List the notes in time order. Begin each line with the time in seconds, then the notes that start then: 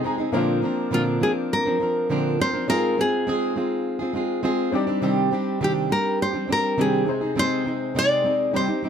Already playing: D#5 G#5
0.04 G#3 C4 D#4 G#4 A#5
0.18 C4 D#4 G#4
0.32 A#2 D3 F3 A#3 C4 D4 F4 A#4
0.37 C5
0.62 F3 C4 D4 A#4
0.91 A#2 D3 F3 C4 D4 F4 A#4
1.21 F3 C4 D4 G#4 A#4
1.53 A#4
1.65 F3 C4 D4 A#4
1.80 F3 C4 D4 A#4
2.09 A#2 D3 F3 C4 D4 A#4
2.39 F3 C4 D4 A#4 C5
2.54 F3 C4 D4 A#4
2.67 G#2 G#3 C4 F4 G#4 A#4
2.98 G#3 C4 F4 G#4
3.27 G#3 C4 F4 G#4
3.56 G#3 C4 F4 G#4
3.99 C4 F4 G#4
4.13 G#3 C4 F4 G#4
4.43 G#3 C4 F4 G#4
4.72 G3 C4 D4 D#4 G4 D5
4.87 G3 C4 D4 G4
5.02 C3 D#3 G3 C4 D4 G4
5.31 G3 C4 D4 G4
5.61 C3 D#3 G3 C4 D4 G4
5.89 G3 C4 D4 G4 A#4
6.22 C5
6.33 G3 C4 D4 G4
6.48 G3 C4 D4 G4
6.52 A#4
6.78 C3 D#3 G3 C4 D4 G4 G#4
7.05 C3 G#3 C4 D#4 G#4
7.09 G#4 C5
7.21 C4 D#4 G#4
7.36 C3 G#3 C4 D#4 G#4 C5
7.65 G#3 C4 D#4 G#4
7.95 C3 G#3 C4 D#4 G#4 D5
8.24 G#3 C4 D#4 G#4
8.51 C3 G3 C4 D#4 G4
8.56 G4 C5
8.68 C4 D#4 G4
8.83 G3 C4 D#4 G4